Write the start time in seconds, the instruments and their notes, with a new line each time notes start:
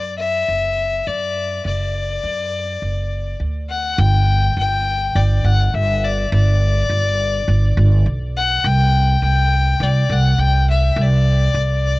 Already playing: upright bass F#2, fiddle D5
0.17 fiddle E5
0.48 upright bass F#1
1.07 upright bass F#2, fiddle D5
1.65 upright bass F#1, fiddle D5
2.23 upright bass F#2
2.82 upright bass F#1
3.40 upright bass D2
3.69 fiddle F#5
3.98 upright bass G1, fiddle G5
4.57 upright bass G1, fiddle G5
5.15 upright bass G1, fiddle D5
5.44 upright bass G1, fiddle F#5
5.74 upright bass G1, fiddle E5
6.04 fiddle D5
6.32 upright bass G1, fiddle D5
6.89 upright bass G1
7.48 upright bass G1
7.77 upright bass G1
8.06 upright bass B1
8.37 fiddle F#5
8.64 upright bass C2, fiddle G5
9.22 upright bass C2, fiddle G5
9.80 upright bass C2, fiddle D5
10.09 upright bass C2, fiddle F#5
10.38 upright bass C2, fiddle G5
10.70 fiddle E5
10.96 upright bass C2
11.01 fiddle D5
11.54 upright bass C2